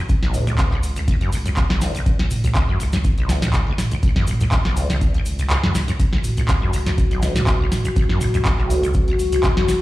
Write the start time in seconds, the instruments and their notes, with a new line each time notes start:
0.09 sub bass C#2, kick, closed hi-hat, shaker
0.23 acid bass B1, snare
0.34 acid bass D2, mid tom, open hi-hat, shaker
0.47 sub bass C#2, acid bass C#2, closed hi-hat, mid tom, shaker
0.58 kick, clap, closed hi-hat, shaker
0.71 acid bass C#2, clap
0.83 sub bass C#2, open hi-hat, shaker
0.96 acid bass C#2, closed hi-hat, shaker
1.08 acid bass C#2, kick, closed hi-hat, shaker
1.21 acid bass F#2, closed hi-hat
1.32 acid bass B1, sub bass C#2, open hi-hat, shaker
1.46 acid bass F#2, closed hi-hat, shaker
1.57 kick, clap, closed hi-hat, shaker
1.70 acid bass B1, sub bass C#2, snare
1.81 acid bass D2, snare, open hi-hat, shaker
1.95 acid bass C#2, closed hi-hat, shaker
2.06 sub bass C#2, kick, closed hi-hat, shaker
2.19 acid bass C#2, snare
2.31 mid tom, open hi-hat, shaker
2.44 sub bass C#2, acid bass C#2, closed hi-hat, mid tom, shaker
2.55 acid bass C#2, kick, clap, closed hi-hat, shaker
2.69 acid bass F#2
2.80 acid bass B1, sub bass C#2, open hi-hat, shaker
2.92 acid bass F#2, snare, closed hi-hat, shaker
3.04 kick, closed hi-hat, shaker
3.18 acid bass B1, closed hi-hat
3.29 sub bass C#2, acid bass D2, snare, open hi-hat, shaker
3.42 acid bass C#2, snare, closed hi-hat, mid tom, shaker
3.53 kick, clap, closed hi-hat, shaker
3.67 sub bass C#2, acid bass C#2
3.78 snare, mid tom, open hi-hat, shaker
3.91 acid bass C#2, closed hi-hat, shaker
4.03 sub bass C#2, acid bass C#2, kick, closed hi-hat, shaker
4.16 acid bass F#2, kick, snare
4.27 acid bass B1, mid tom, open hi-hat, shaker
4.41 sub bass C#2, acid bass F#2, closed hi-hat, mid tom, shaker
4.52 kick, clap, closed hi-hat, shaker
4.65 acid bass B1, snare, clap
4.77 sub bass C#2, acid bass D2, open hi-hat, shaker
4.90 acid bass C#2, snare, closed hi-hat, shaker
5.01 kick, closed hi-hat, shaker
5.14 acid bass C#2, closed hi-hat
5.26 sub bass C#2, open hi-hat, shaker
5.39 acid bass C#2, closed hi-hat, shaker
5.50 acid bass C#2, clap, closed hi-hat, shaker
5.63 sub bass C#2, acid bass F#2, snare
5.75 acid bass B1, snare, open hi-hat, shaker
5.88 acid bass F#2, closed hi-hat, shaker
6.00 sub bass C#2, analog synth pad F#4, kick, closed hi-hat, shaker
6.13 acid bass C#2, snare
6.24 mid tom, open hi-hat, shaker
6.37 acid bass C#2, sub bass C#2, closed hi-hat, mid tom, shaker
6.48 acid bass C#2, kick, clap, closed hi-hat, shaker
6.62 acid bass F#2
6.73 acid bass B1, sub bass C#2, open hi-hat, shaker
6.86 acid bass F#2, snare, closed hi-hat, shaker
6.98 kick, closed hi-hat, shaker
7.11 acid bass B1, closed hi-hat
7.22 sub bass C#2, acid bass D2, snare, open hi-hat, shaker
7.36 acid bass C#2, snare, closed hi-hat, mid tom, shaker
7.47 kick, clap, closed hi-hat, shaker
7.60 acid bass C#2, sub bass C#2
7.72 snare, mid tom, open hi-hat, shaker
7.85 acid bass C#2, closed hi-hat, shaker
7.96 acid bass C#2, sub bass C#2, kick, closed hi-hat, shaker
8.09 acid bass F#2, snare
8.21 acid bass B1, mid tom, open hi-hat, shaker
8.34 sub bass C#2, acid bass F#2, closed hi-hat, mid tom, shaker
8.45 kick, clap, closed hi-hat, shaker
8.58 acid bass B1, clap
8.70 sub bass C#2, acid bass D2, open hi-hat, shaker
8.83 acid bass C#2, closed hi-hat, shaker
8.94 kick, closed hi-hat, shaker
9.08 acid bass C#2, closed hi-hat
9.19 sub bass C#2, open hi-hat, shaker
9.32 acid bass C#2, closed hi-hat, shaker
9.43 acid bass C#2, kick, clap, closed hi-hat, shaker
9.57 sub bass C#2, acid bass F#2, snare
9.68 acid bass B1, snare, open hi-hat, shaker